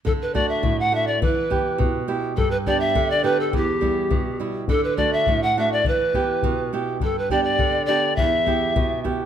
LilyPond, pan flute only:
\new Staff \with { instrumentName = "Pan flute" } { \time 2/4 \key e \minor \tempo 4 = 104 a'16 b'16 d''16 e''8 fis''16 e''16 d''16 | b'4. r8 | a'16 b'16 d''16 e''8 d''16 b'16 a'16 | g'4. r8 |
a'16 b'16 d''16 e''8 fis''16 e''16 d''16 | b'4. r8 | a'16 b'16 d''16 d''8. d''8 | e''4. r8 | }